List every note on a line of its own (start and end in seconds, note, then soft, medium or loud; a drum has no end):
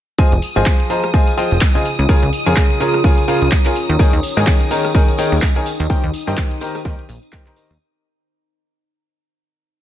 0.18 0.30 F3 loud
0.18 4.52 F4 medium
0.18 0.30 F4 medium
0.18 0.30 G#4 medium
0.18 0.30 C5 medium
0.18 0.30 D#5 medium
0.18 0.30 G#5 loud
0.18 7.81 D#6 medium
0.18 kick loud
0.18 closed hi-hat medium
0.32 0.40 F1 medium
0.32 closed hi-hat medium
0.42 open hi-hat loud
0.52 0.64 G#1 medium
0.52 0.87 F3 medium
0.52 0.87 F4 medium
0.52 0.87 G#4 medium
0.52 0.87 C5 medium
0.52 2.62 D#5 medium
0.52 0.87 D#5 medium
0.52 0.87 G#5 loud
0.52 closed hi-hat soft
0.66 kick loud
0.66 clap loud
0.66 closed hi-hat medium
0.80 closed hi-hat medium
0.90 1.07 F3 medium
0.90 1.07 F4 medium
0.90 1.07 G#4 medium
0.90 1.07 C5 medium
0.90 1.07 D#5 medium
0.90 1.07 A#5 loud
0.90 open hi-hat medium
1.04 cross-stick medium
1.14 1.31 F3 loud
1.14 1.31 F4 medium
1.14 1.31 G#4 medium
1.14 1.31 C5 medium
1.14 1.31 D#5 medium
1.14 1.31 G#5 loud
1.14 kick loud
1.14 closed hi-hat medium
1.27 closed hi-hat medium
1.37 1.55 F3 medium
1.37 1.55 F4 medium
1.37 1.55 G#4 medium
1.37 1.55 C5 medium
1.37 1.55 D#5 medium
1.37 1.55 G5 loud
1.37 open hi-hat loud
1.51 1.59 F1 medium
1.51 closed hi-hat soft
1.61 kick loud
1.61 clap loud
1.61 closed hi-hat medium
1.75 1.83 C#3 medium
1.75 1.83 F4 medium
1.75 1.83 G#4 medium
1.75 1.83 C5 medium
1.75 1.83 D#5 medium
1.75 1.83 G#5 loud
1.75 closed hi-hat medium
1.85 open hi-hat medium
1.99 2.06 C#2 loud
1.99 closed hi-hat soft
2.04 5.66 C#5 medium
2.09 2.20 C#3 loud
2.09 2.20 F4 medium
2.09 2.20 G#4 medium
2.09 2.20 A#4 medium
2.09 2.20 C#5 medium
2.09 2.20 G#5 loud
2.09 4.53 A#5 loud
2.09 kick loud
2.09 closed hi-hat medium
2.23 2.30 C#2 loud
2.23 closed hi-hat medium
2.33 open hi-hat loud
2.46 2.54 F2 medium
2.46 2.78 C#3 medium
2.46 2.78 F4 medium
2.46 2.78 G#4 medium
2.46 2.78 A#4 medium
2.46 2.78 C#5 medium
2.46 2.78 G#5 loud
2.46 closed hi-hat soft
2.56 kick loud
2.56 clap loud
2.56 closed hi-hat medium
2.70 closed hi-hat medium
2.80 2.97 C#3 medium
2.80 2.97 F4 medium
2.80 2.97 G#4 medium
2.80 2.97 A#4 medium
2.80 2.97 C#5 medium
2.80 2.97 A#5 loud
2.80 open hi-hat loud
2.94 cross-stick medium
3.04 3.21 C#3 loud
3.04 3.21 F4 medium
3.04 3.21 G#4 medium
3.04 3.21 A#4 medium
3.04 3.21 C#5 medium
3.04 3.21 G#5 loud
3.04 kick loud
3.04 closed hi-hat medium
3.18 closed hi-hat medium
3.28 3.45 C#3 medium
3.28 3.45 F4 medium
3.28 3.45 G#4 medium
3.28 3.45 A#4 medium
3.28 3.45 C#5 medium
3.28 3.45 F5 loud
3.28 open hi-hat loud
3.42 3.49 C#2 medium
3.42 closed hi-hat soft
3.51 kick loud
3.51 clap loud
3.51 closed hi-hat medium
3.65 3.74 F4 medium
3.65 3.74 G#4 medium
3.65 3.74 A#4 medium
3.65 3.74 C#5 medium
3.65 3.74 G#5 loud
3.65 clap soft
3.65 closed hi-hat medium
3.76 7.80 D#4 medium
3.76 open hi-hat medium
3.89 3.97 D#2 loud
3.89 closed hi-hat soft
3.99 4.11 D#3 loud
3.99 4.11 D#4 medium
3.99 4.11 G#4 medium
3.99 4.11 A#4 medium
3.99 4.11 C#5 medium
3.99 4.11 G#5 loud
3.99 kick loud
3.99 closed hi-hat medium
3.99 tambourine soft
4.13 4.21 D#2 loud
4.13 closed hi-hat medium
4.23 open hi-hat loud
4.23 tambourine loud
4.37 4.44 G#2 medium
4.37 4.68 D#3 loud
4.37 4.68 D#4 medium
4.37 4.68 G#4 medium
4.37 4.68 A#4 medium
4.37 4.68 C#5 medium
4.37 4.68 G#5 loud
4.37 closed hi-hat soft
4.37 tambourine medium
4.47 kick loud
4.47 clap loud
4.47 closed hi-hat medium
4.61 closed hi-hat soft
4.71 4.88 D#3 medium
4.71 4.88 D#4 medium
4.71 4.88 G#4 medium
4.71 4.88 A#4 medium
4.71 4.88 C#5 medium
4.71 4.88 A#5 loud
4.71 open hi-hat loud
4.71 tambourine loud
4.84 cross-stick medium
4.84 tambourine medium
4.94 5.12 D#3 loud
4.94 5.12 D#4 medium
4.94 5.12 G#4 medium
4.94 5.12 A#4 medium
4.94 5.12 C#5 medium
4.94 5.12 G#5 loud
4.94 kick loud
4.94 closed hi-hat medium
4.94 tambourine soft
5.08 closed hi-hat medium
5.18 5.36 D#3 medium
5.18 5.36 D#4 medium
5.18 5.36 G#4 medium
5.18 5.36 A#4 medium
5.18 5.36 C#5 medium
5.18 5.36 G5 loud
5.18 open hi-hat loud
5.18 tambourine loud
5.32 5.40 D#2 medium
5.32 closed hi-hat soft
5.32 tambourine medium
5.42 kick loud
5.42 clap loud
5.42 closed hi-hat medium
5.42 tambourine soft
5.56 5.64 D#3 medium
5.56 5.64 D#4 medium
5.56 5.64 G#4 medium
5.56 5.64 A#4 medium
5.56 5.64 C#5 medium
5.56 5.64 G#5 loud
5.56 closed hi-hat medium
5.66 open hi-hat loud
5.66 tambourine loud
5.80 5.87 D#2 loud
5.80 closed hi-hat soft
5.80 tambourine medium
5.89 6.01 D#3 loud
5.89 6.01 D#4 medium
5.89 6.01 G4 medium
5.89 6.01 A#4 medium
5.89 6.01 C5 medium
5.89 6.01 G5 loud
5.89 kick loud
5.89 closed hi-hat medium
5.89 tambourine soft
6.04 6.11 D#2 loud
6.04 closed hi-hat medium
6.13 open hi-hat loud
6.13 tambourine loud
6.27 6.35 G2 medium
6.27 6.59 D#3 medium
6.27 6.59 D#4 medium
6.27 6.59 G4 medium
6.27 6.59 A#4 medium
6.27 6.59 C5 medium
6.27 6.59 G5 loud
6.27 closed hi-hat soft
6.27 tambourine medium
6.37 kick loud
6.37 clap loud
6.37 closed hi-hat medium
6.37 tambourine soft
6.51 closed hi-hat soft
6.61 6.78 D#3 medium
6.61 6.78 D#4 medium
6.61 6.78 G4 medium
6.61 6.78 A#4 medium
6.61 6.78 C5 medium
6.61 6.78 A#5 loud
6.61 open hi-hat loud
6.61 tambourine medium
6.75 cross-stick medium
6.75 tambourine medium
6.85 6.95 D#2 loud
6.85 7.02 D#3 loud
6.85 7.02 D#4 medium
6.85 7.02 G4 medium
6.85 7.02 A#4 medium
6.85 7.02 C5 medium
6.85 7.02 G5 loud
6.85 kick loud
6.85 closed hi-hat medium
6.85 tambourine soft
6.99 closed hi-hat medium
7.09 7.19 A#1 loud
7.09 open hi-hat loud
7.09 tambourine medium
7.23 closed hi-hat soft
7.23 tambourine medium
7.32 7.44 D#3 medium
7.32 7.44 D#4 medium
7.32 7.44 G4 medium
7.32 7.44 A#4 medium
7.32 7.44 C5 medium
7.32 7.44 G5 medium
7.32 kick loud
7.32 clap loud
7.32 closed hi-hat medium
7.46 7.54 D#3 medium
7.46 7.54 D#4 medium
7.46 7.54 G4 medium
7.46 7.54 A#4 medium
7.46 7.54 C5 medium
7.46 7.54 A#5 loud
7.46 clap soft
7.46 closed hi-hat medium
7.56 7.68 D#3 medium
7.56 7.68 D#4 medium
7.56 7.68 G4 medium
7.56 7.68 A#4 medium
7.56 7.68 C5 medium
7.56 7.68 A#5 medium
7.56 open hi-hat loud
7.56 tambourine medium
7.70 7.78 D#2 medium
7.70 closed hi-hat soft
7.70 tambourine medium